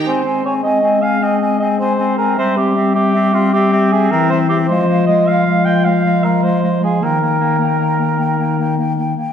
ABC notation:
X:1
M:12/8
L:1/8
Q:3/8=103
K:Ab
V:1 name="Flute"
a a a a a a a a a a a a | =e e e e e e e e e e e e | f f f f f f f f f f f f | g g g g g g g g g g g g |]
V:2 name="Cor anglais"
c2 d e2 f e2 e c2 B | c G2 G2 F G2 A B c G | c2 e f2 g f2 B c2 A | B8- B z3 |]
V:3 name="Clarinet"
C C C C C C C C C C C C | C C C C C C C C C C C C | A, A, A, A, A, A, A, A, A, A, A, A, | B, B, B, B, B, B, B, B, B, B, B, B, |]
V:4 name="French horn section" clef=bass
A,12 | G,8- G, =E,3 | F,12 | E,8- E,3 z |]